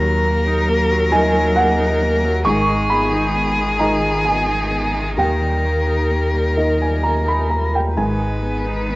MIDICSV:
0, 0, Header, 1, 6, 480
1, 0, Start_track
1, 0, Key_signature, 5, "minor"
1, 0, Tempo, 894188
1, 1315, Time_signature, 6, 3, 24, 8
1, 2281, Tempo, 928793
1, 4713, End_track
2, 0, Start_track
2, 0, Title_t, "Felt piano"
2, 0, Program_c, 0, 0
2, 0, Control_c, 0, 64, 127
2, 0, Note_on_c, 0, 39, 82
2, 0, Note_on_c, 0, 82, 99
2, 575, Note_off_c, 0, 39, 0
2, 578, Note_off_c, 0, 82, 0
2, 597, Note_on_c, 0, 54, 67
2, 598, Note_on_c, 0, 63, 66
2, 600, Note_on_c, 0, 80, 120
2, 602, Note_on_c, 0, 75, 73
2, 820, Note_off_c, 0, 80, 0
2, 836, Note_on_c, 0, 78, 110
2, 1293, Note_off_c, 0, 54, 0
2, 1294, Note_off_c, 0, 63, 0
2, 1294, Note_off_c, 0, 78, 0
2, 1296, Note_off_c, 0, 75, 0
2, 1314, Note_on_c, 0, 85, 113
2, 1319, Note_on_c, 0, 44, 83
2, 1324, Control_c, 0, 64, 0
2, 1410, Control_c, 0, 64, 127
2, 1537, Note_off_c, 0, 85, 0
2, 1556, Note_on_c, 0, 83, 97
2, 2016, Note_off_c, 0, 83, 0
2, 2017, Note_off_c, 0, 44, 0
2, 2037, Note_on_c, 0, 56, 59
2, 2037, Note_on_c, 0, 82, 99
2, 2038, Note_on_c, 0, 63, 56
2, 2040, Note_on_c, 0, 75, 65
2, 2264, Note_off_c, 0, 82, 0
2, 2281, Note_on_c, 0, 80, 101
2, 2737, Note_off_c, 0, 80, 0
2, 2738, Note_off_c, 0, 56, 0
2, 2738, Note_off_c, 0, 63, 0
2, 2740, Note_off_c, 0, 75, 0
2, 2758, Note_on_c, 0, 39, 61
2, 2765, Note_on_c, 0, 79, 83
2, 2769, Control_c, 0, 64, 0
2, 2847, Control_c, 0, 64, 127
2, 3459, Note_off_c, 0, 39, 0
2, 3462, Note_off_c, 0, 79, 0
2, 3478, Note_on_c, 0, 58, 42
2, 3480, Note_on_c, 0, 63, 45
2, 3482, Note_on_c, 0, 75, 50
2, 3608, Note_on_c, 0, 80, 67
2, 3716, Note_off_c, 0, 80, 0
2, 3720, Note_on_c, 0, 82, 81
2, 3832, Note_off_c, 0, 82, 0
2, 3847, Note_on_c, 0, 83, 74
2, 3957, Note_off_c, 0, 83, 0
2, 3961, Note_on_c, 0, 82, 71
2, 4074, Note_off_c, 0, 82, 0
2, 4091, Note_on_c, 0, 79, 69
2, 4182, Note_off_c, 0, 58, 0
2, 4183, Note_off_c, 0, 63, 0
2, 4184, Note_off_c, 0, 75, 0
2, 4199, Note_off_c, 0, 79, 0
2, 4203, Note_on_c, 0, 44, 64
2, 4205, Note_on_c, 0, 80, 84
2, 4214, Control_c, 0, 64, 0
2, 4310, Control_c, 0, 64, 127
2, 4713, Note_off_c, 0, 44, 0
2, 4713, Note_off_c, 0, 80, 0
2, 4713, End_track
3, 0, Start_track
3, 0, Title_t, "Violin"
3, 0, Program_c, 1, 40
3, 0, Note_on_c, 1, 70, 84
3, 1294, Note_off_c, 1, 70, 0
3, 1319, Note_on_c, 1, 68, 86
3, 2740, Note_off_c, 1, 68, 0
3, 2768, Note_on_c, 1, 70, 66
3, 4082, Note_off_c, 1, 70, 0
3, 4205, Note_on_c, 1, 71, 61
3, 4713, Note_off_c, 1, 71, 0
3, 4713, End_track
4, 0, Start_track
4, 0, Title_t, "Viola"
4, 0, Program_c, 2, 41
4, 8, Note_on_c, 2, 54, 70
4, 131, Note_on_c, 2, 58, 76
4, 140, Note_off_c, 2, 54, 0
4, 251, Note_on_c, 2, 63, 78
4, 259, Note_off_c, 2, 58, 0
4, 368, Note_on_c, 2, 58, 74
4, 376, Note_off_c, 2, 63, 0
4, 489, Note_on_c, 2, 54, 77
4, 497, Note_off_c, 2, 58, 0
4, 604, Note_on_c, 2, 51, 84
4, 612, Note_off_c, 2, 54, 0
4, 724, Note_on_c, 2, 54, 77
4, 732, Note_off_c, 2, 51, 0
4, 846, Note_on_c, 2, 58, 80
4, 854, Note_off_c, 2, 54, 0
4, 964, Note_on_c, 2, 63, 71
4, 973, Note_off_c, 2, 58, 0
4, 1085, Note_on_c, 2, 58, 74
4, 1093, Note_off_c, 2, 63, 0
4, 1204, Note_on_c, 2, 54, 75
4, 1212, Note_off_c, 2, 58, 0
4, 1319, Note_off_c, 2, 54, 0
4, 1322, Note_on_c, 2, 51, 87
4, 1444, Note_on_c, 2, 56, 75
4, 1452, Note_off_c, 2, 51, 0
4, 1561, Note_on_c, 2, 59, 71
4, 1569, Note_off_c, 2, 56, 0
4, 1683, Note_on_c, 2, 63, 75
4, 1691, Note_off_c, 2, 59, 0
4, 1798, Note_on_c, 2, 59, 71
4, 1807, Note_off_c, 2, 63, 0
4, 1924, Note_on_c, 2, 56, 66
4, 1932, Note_off_c, 2, 59, 0
4, 2043, Note_on_c, 2, 51, 70
4, 2051, Note_off_c, 2, 56, 0
4, 2164, Note_on_c, 2, 56, 61
4, 2172, Note_off_c, 2, 51, 0
4, 2283, Note_on_c, 2, 59, 64
4, 2291, Note_off_c, 2, 56, 0
4, 2401, Note_on_c, 2, 63, 59
4, 2408, Note_off_c, 2, 59, 0
4, 2517, Note_on_c, 2, 59, 56
4, 2524, Note_off_c, 2, 63, 0
4, 2639, Note_on_c, 2, 56, 55
4, 2647, Note_off_c, 2, 59, 0
4, 2757, Note_off_c, 2, 56, 0
4, 2761, Note_on_c, 2, 51, 54
4, 2884, Note_on_c, 2, 55, 50
4, 2891, Note_off_c, 2, 51, 0
4, 3000, Note_on_c, 2, 58, 58
4, 3007, Note_off_c, 2, 55, 0
4, 3116, Note_on_c, 2, 63, 56
4, 3124, Note_off_c, 2, 58, 0
4, 3240, Note_on_c, 2, 58, 51
4, 3248, Note_off_c, 2, 63, 0
4, 3358, Note_on_c, 2, 55, 53
4, 3366, Note_off_c, 2, 58, 0
4, 3475, Note_on_c, 2, 51, 49
4, 3483, Note_off_c, 2, 55, 0
4, 3593, Note_on_c, 2, 55, 50
4, 3601, Note_off_c, 2, 51, 0
4, 3713, Note_on_c, 2, 58, 52
4, 3721, Note_off_c, 2, 55, 0
4, 3834, Note_on_c, 2, 63, 49
4, 3842, Note_off_c, 2, 58, 0
4, 3957, Note_on_c, 2, 58, 48
4, 3964, Note_off_c, 2, 63, 0
4, 4076, Note_on_c, 2, 55, 46
4, 4084, Note_off_c, 2, 58, 0
4, 4191, Note_off_c, 2, 55, 0
4, 4194, Note_on_c, 2, 51, 59
4, 4318, Note_on_c, 2, 56, 54
4, 4325, Note_off_c, 2, 51, 0
4, 4435, Note_on_c, 2, 59, 55
4, 4443, Note_off_c, 2, 56, 0
4, 4561, Note_on_c, 2, 63, 57
4, 4569, Note_off_c, 2, 59, 0
4, 4682, Note_on_c, 2, 59, 55
4, 4690, Note_off_c, 2, 63, 0
4, 4713, Note_off_c, 2, 59, 0
4, 4713, End_track
5, 0, Start_track
5, 0, Title_t, "Cello"
5, 0, Program_c, 3, 42
5, 0, Note_on_c, 3, 54, 84
5, 1316, Note_on_c, 3, 51, 89
5, 1324, Note_off_c, 3, 54, 0
5, 4098, Note_off_c, 3, 51, 0
5, 4209, Note_on_c, 3, 51, 75
5, 4713, Note_off_c, 3, 51, 0
5, 4713, End_track
6, 0, Start_track
6, 0, Title_t, "Sub bass"
6, 0, Program_c, 4, 38
6, 0, Note_on_c, 4, 39, 71
6, 1318, Note_on_c, 4, 32, 74
6, 1326, Note_off_c, 4, 39, 0
6, 2759, Note_on_c, 4, 39, 67
6, 2767, Note_off_c, 4, 32, 0
6, 4207, Note_on_c, 4, 32, 71
6, 4214, Note_off_c, 4, 39, 0
6, 4713, Note_off_c, 4, 32, 0
6, 4713, End_track
0, 0, End_of_file